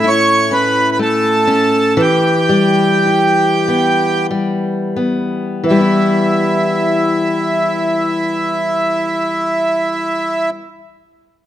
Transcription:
Already playing: A2 A3 C#4
0.04 E4 C#5
0.51 C#4 B4
0.92 B4
0.99 A3 A4
1.47 C#4
1.97 E3
2.01 G4
2.49 G3
3.07 E4
3.68 B3
4.31 G3
4.96 B3
5.64 E3 E4
5.70 G3
5.76 B3
5.81 E4

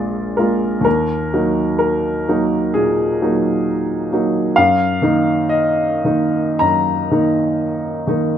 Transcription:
Already playing: A#1 G#3 A#3 F4 D5
0.37 G#3 A#3 F4 A#4
0.81 D#2 A#4
1.34 F#3 A#3 D#4
1.79 A#4
2.29 F#3 A#3 D#4
2.74 A#2 G#4
3.22 F#3 A#3 D#4
4.13 F#3 A#3 D#4
4.56 F#2 F5
5.02 D#3 A#3 D#4
5.49 D#5
6.05 D#3 A#3 D#4
6.59 F#2 A#5
7.11 D#3 A#3 D#4
8.07 D#3 A#3 D#4

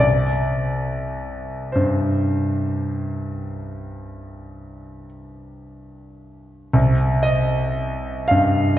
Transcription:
0.00 C2 D5
1.72 G2 C5
6.73 C2
7.23 D#5
8.28 G2 F5

